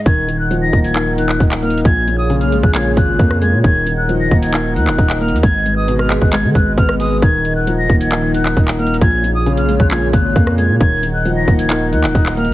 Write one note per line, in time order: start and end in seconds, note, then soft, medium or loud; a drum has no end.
0.06 0.70 D#1 loud
0.06 0.27 D#3 loud
0.06 1.83 D#3 medium
0.06 1.83 D#4 medium
0.06 1.83 D#5 medium
0.06 1.83 F#5 medium
0.06 0.38 G#6 loud
0.06 kick loud
0.06 closed hi-hat medium
0.28 0.94 D#3 medium
0.28 closed hi-hat medium
0.40 0.57 F#6 medium
0.51 1.63 F3 medium
0.51 closed hi-hat medium
0.62 0.80 A#6 medium
0.73 1.38 D#1 loud
0.73 1.61 A#3 medium
0.73 kick medium
0.73 closed hi-hat soft
0.84 1.16 G#6 medium
0.84 closed hi-hat medium
0.95 1.16 D#3 medium
0.95 clap loud
0.95 closed hi-hat medium
1.18 1.85 D#3 medium
1.18 1.43 F#6 loud
1.18 closed hi-hat medium
1.29 clap medium
1.40 1.83 D#1 loud
1.40 1.85 D#4 loud
1.40 kick loud
1.40 closed hi-hat medium
1.52 clap medium
1.63 1.85 A#3 medium
1.63 1.80 F6 medium
1.63 closed hi-hat soft
1.70 closed hi-hat medium
1.78 closed hi-hat medium
1.85 2.43 A#1 loud
1.85 2.06 A#2 loud
1.85 3.62 A#3 medium
1.85 3.62 F4 medium
1.85 3.62 G#4 medium
1.85 3.62 C#5 medium
1.85 2.17 G#6 loud
1.85 kick loud
1.85 closed hi-hat medium
2.07 2.73 A#2 medium
2.07 closed hi-hat medium
2.19 2.36 D#6 medium
2.30 3.42 C#3 medium
2.30 closed hi-hat medium
2.41 2.54 B1 loud
2.41 2.58 F6 medium
2.41 closed hi-hat medium
2.52 2.63 A#1 loud
2.52 3.40 G#3 medium
2.52 closed hi-hat medium
2.63 2.96 A#1 loud
2.63 2.72 F#6 medium
2.63 kick loud
2.75 2.96 A#2 loud
2.75 2.92 G#6 medium
2.75 clap loud
2.75 closed hi-hat medium
2.97 3.18 G#1 loud
2.97 3.64 A#2 medium
2.97 3.39 F#6 medium
2.97 kick loud
2.97 closed hi-hat medium
3.19 3.55 F2 loud
3.19 3.64 A#3 loud
3.19 kick loud
3.19 closed hi-hat medium
3.31 cross-stick medium
3.42 3.64 G#3 medium
3.42 3.59 G#6 medium
3.42 closed hi-hat medium
3.53 3.64 A#2 loud
3.64 4.29 D#1 loud
3.64 3.85 D#3 loud
3.64 5.41 D#3 medium
3.64 5.41 D#4 medium
3.64 5.41 D#5 medium
3.64 5.41 F#5 medium
3.64 3.96 G#6 loud
3.64 kick loud
3.64 closed hi-hat medium
3.87 4.52 D#3 medium
3.87 closed hi-hat medium
3.97 4.15 F#6 medium
4.09 5.21 F3 medium
4.09 closed hi-hat medium
4.20 4.38 A#6 medium
4.31 4.78 D#1 loud
4.31 5.19 A#3 medium
4.31 kick medium
4.31 closed hi-hat soft
4.42 4.74 G#6 medium
4.42 closed hi-hat medium
4.54 4.75 D#3 loud
4.54 clap loud
4.54 closed hi-hat medium
4.76 4.89 D#2 loud
4.76 5.43 D#3 medium
4.76 5.18 F#6 medium
4.76 closed hi-hat medium
4.87 4.98 D#1 loud
4.87 clap medium
4.98 5.34 D#1 loud
4.98 5.43 D#4 loud
4.98 kick loud
4.98 closed hi-hat medium
5.10 clap medium
5.21 5.43 A#3 medium
5.21 5.38 F6 medium
5.21 closed hi-hat soft
5.28 5.43 D#2 loud
5.28 closed hi-hat medium
5.36 closed hi-hat medium
5.43 6.19 G#1 loud
5.43 5.64 G#2 medium
5.43 7.21 G#3 medium
5.43 7.21 G#4 medium
5.43 7.21 B4 medium
5.43 7.21 D#5 medium
5.43 5.75 G#6 loud
5.43 kick loud
5.43 closed hi-hat medium
5.66 6.31 G#2 medium
5.66 closed hi-hat medium
5.77 5.94 D#6 medium
5.88 7.00 B2 loud
5.88 closed hi-hat medium
5.99 6.17 F6 medium
5.99 cross-stick medium
6.10 6.99 G#3 medium
6.10 clap medium
6.10 closed hi-hat medium
6.22 6.46 G#1 loud
6.22 6.30 F#6 medium
6.22 kick loud
6.33 6.54 G#2 medium
6.33 6.50 G#6 loud
6.33 clap loud
6.33 closed hi-hat medium
6.44 6.55 D#3 loud
6.55 6.77 G#1 loud
6.55 7.22 G#2 medium
6.55 6.73 F#6 medium
6.55 kick loud
6.55 closed hi-hat medium
6.78 7.21 G#1 loud
6.78 7.22 B3 loud
6.78 6.95 F6 loud
6.78 kick loud
6.78 closed hi-hat medium
6.89 cross-stick medium
7.00 7.22 G#3 medium
7.00 7.17 D#6 medium
7.00 open hi-hat medium
7.22 7.87 D#1 loud
7.22 7.43 D#3 loud
7.22 9.00 D#3 medium
7.22 9.00 D#4 medium
7.22 9.00 D#5 medium
7.22 9.00 F#5 medium
7.22 7.54 G#6 loud
7.22 kick loud
7.22 closed hi-hat medium
7.45 8.10 D#3 medium
7.45 closed hi-hat medium
7.56 7.73 F#6 medium
7.67 8.79 F3 medium
7.67 closed hi-hat medium
7.79 7.96 A#6 medium
7.90 8.54 D#1 loud
7.90 8.78 A#3 medium
7.90 kick medium
7.90 closed hi-hat soft
8.01 8.32 G#6 medium
8.01 closed hi-hat medium
8.12 8.33 D#3 medium
8.12 clap loud
8.12 closed hi-hat medium
8.34 9.01 D#3 medium
8.34 8.59 F#6 medium
8.34 closed hi-hat medium
8.46 clap medium
8.57 9.00 D#1 loud
8.57 9.01 D#4 loud
8.57 kick loud
8.57 closed hi-hat medium
8.68 clap medium
8.79 9.01 A#3 medium
8.79 8.97 F6 medium
8.79 closed hi-hat soft
8.87 closed hi-hat medium
8.94 closed hi-hat medium
9.01 9.59 A#1 loud
9.01 9.22 A#2 loud
9.01 10.79 A#3 medium
9.01 10.79 F4 medium
9.01 10.79 G#4 medium
9.01 10.79 C#5 medium
9.01 9.33 G#6 loud
9.01 kick loud
9.01 closed hi-hat medium
9.24 9.90 A#2 medium
9.24 closed hi-hat medium
9.35 9.53 D#6 medium
9.46 10.58 C#3 medium
9.46 closed hi-hat medium
9.57 9.70 B1 loud
9.57 9.75 F6 medium
9.57 closed hi-hat medium
9.69 9.79 A#1 loud
9.69 10.57 G#3 medium
9.69 closed hi-hat medium
9.80 10.12 A#1 loud
9.80 9.89 F#6 medium
9.80 kick loud
9.91 10.12 A#2 loud
9.91 10.08 G#6 medium
9.91 clap loud
9.91 closed hi-hat medium
10.13 10.35 G#1 loud
10.13 10.81 A#2 medium
10.13 10.56 F#6 medium
10.13 kick loud
10.13 closed hi-hat medium
10.36 10.71 F2 loud
10.36 10.81 A#3 loud
10.36 kick loud
10.36 closed hi-hat medium
10.47 cross-stick medium
10.58 10.81 G#3 medium
10.58 10.76 G#6 medium
10.58 closed hi-hat medium
10.69 10.80 A#2 loud
10.80 11.45 D#1 loud
10.80 11.02 D#3 loud
10.80 12.54 D#3 medium
10.80 12.54 D#4 medium
10.80 12.54 D#5 medium
10.80 12.54 F#5 medium
10.80 11.12 G#6 loud
10.80 kick loud
10.80 closed hi-hat medium
11.03 11.69 D#3 medium
11.03 closed hi-hat medium
11.14 11.31 F#6 medium
11.25 12.37 F3 medium
11.25 closed hi-hat medium
11.37 11.54 A#6 medium
11.48 11.94 D#1 loud
11.48 12.36 A#3 medium
11.48 kick medium
11.48 closed hi-hat soft
11.59 11.91 G#6 medium
11.59 closed hi-hat medium
11.70 11.91 D#3 loud
11.70 clap loud
11.70 closed hi-hat medium
11.92 12.05 D#2 loud
11.92 12.54 D#3 medium
11.92 12.35 F#6 medium
11.92 closed hi-hat medium
12.04 12.14 D#1 loud
12.04 clap medium
12.15 12.50 D#1 loud
12.15 12.54 D#4 loud
12.15 kick loud
12.15 closed hi-hat medium
12.26 clap medium
12.37 12.54 A#3 medium
12.37 12.54 F6 medium
12.37 closed hi-hat soft
12.45 12.54 D#2 loud
12.45 closed hi-hat medium